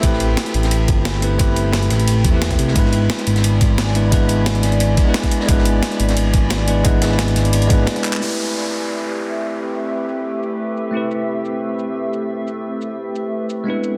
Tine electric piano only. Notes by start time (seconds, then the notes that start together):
Already playing: C4 E4 G4 B4
0.00 A3 C4 E4
0.05 G4 B4
1.21 A3 C4 E4 G4 B4
1.38 A3 C4 E4 G4 B4
2.30 A3 C4 E4
2.35 G4 B4
2.73 G#3 B3 D4
2.77 E4 B4
3.94 G#3 B3 D4 E4 B4
4.11 G#3 B3 D4 E4 B4
5.04 G#3 B3 D4
5.08 E4 B4
5.46 G#3 B3 D4
5.50 E4 B4
6.67 G#3 B3 D4 E4 B4
6.83 G#3 B3 D4 E4 B4
7.67 G#3 B3 D4
7.72 E4 B4
8.18 A3 C4 E4
8.23 G4 B4
10.91 A3 C4 E4
10.95 G4 B4
13.64 G#3 B3 D4
13.68 E4 B4